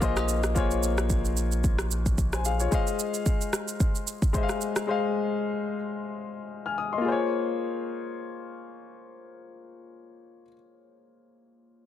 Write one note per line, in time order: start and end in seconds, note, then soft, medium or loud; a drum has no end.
0.00 2.68 A#1 medium
0.00 0.55 A#3 medium
0.00 0.55 F4 medium
0.00 0.02 G#4 medium
0.00 0.46 G#4 medium
0.00 0.03 C5 medium
0.00 0.47 C5 medium
0.00 0.58 C#5 medium
0.00 0.47 D#5 loud
0.00 kick loud
0.00 shaker medium
0.17 cross-stick medium
0.17 high agogo medium
0.17 shaker medium
0.29 shaker medium
0.44 cross-stick medium
0.44 shaker medium
0.55 1.42 A#3 medium
0.55 1.43 F4 medium
0.55 1.43 G#4 medium
0.55 1.44 C5 medium
0.55 1.44 C#5 loud
0.55 kick loud
0.55 shaker medium
0.71 shaker medium
0.83 shaker medium
0.98 cross-stick medium
0.98 shaker soft
1.10 kick medium
1.10 shaker medium
1.25 shaker soft
1.37 shaker medium
1.52 shaker soft
1.64 kick loud
1.64 shaker medium
1.79 cross-stick medium
1.79 shaker soft
1.91 shaker medium
2.06 kick medium
2.06 shaker medium
2.18 kick medium
2.18 shaker medium
2.33 2.45 C5 medium
2.33 2.45 G#5 medium
2.33 cross-stick medium
2.33 shaker medium
2.45 2.60 G#4 medium
2.45 2.59 F5 medium
2.45 shaker medium
2.60 2.86 F4 medium
2.60 2.86 C#5 medium
2.60 shaker medium
2.71 3.58 G#3 medium
2.71 3.59 G#4 medium
2.71 3.59 C5 medium
2.71 3.60 D#5 medium
2.71 3.60 F5 loud
2.71 kick loud
2.71 shaker medium
2.87 shaker medium
2.99 shaker medium
3.14 shaker soft
3.26 kick loud
3.26 shaker medium
3.41 shaker soft
3.53 cross-stick medium
3.53 shaker medium
3.68 shaker soft
3.80 kick loud
3.80 shaker medium
3.95 shaker soft
4.07 shaker medium
4.22 kick medium
4.22 shaker medium
4.33 4.78 G#3 medium
4.33 4.78 G#4 medium
4.33 4.79 C5 medium
4.33 4.79 D#5 medium
4.33 4.42 E5 medium
4.33 kick medium
4.33 shaker medium
4.43 4.83 F5 medium
4.49 cross-stick medium
4.49 shaker medium
4.61 shaker medium
4.76 cross-stick medium
4.76 shaker medium
4.87 5.75 G#3 medium
4.87 5.75 G#4 medium
4.87 5.76 C5 medium
4.87 5.76 D#5 medium
4.87 5.76 F5 medium
6.66 6.77 G#5 medium
6.66 6.77 F6 medium
6.78 6.92 D#6 medium
6.93 7.19 D#5 medium
6.93 7.18 C6 medium
6.98 10.40 A#3 medium
6.98 10.44 F4 medium
7.05 10.48 G#4 medium
7.05 10.51 C5 medium
7.12 10.55 C#5 medium